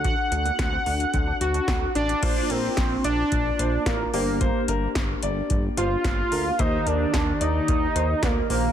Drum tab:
CC |----------------|x---------------|----------------|----------------|
HH |x-xxx-oxx-xxx-xx|x-x-x-x-x-x-x-o-|x-x-x-x-x-x-x-o-|x-x-x-x-x-x-x-o-|
SD |----o-------o---|----o-------o---|----o-------o---|----o-------o---|
BD |o---o---o---o---|o---o---o---o---|o---o---o---o---|o---o---o---o---|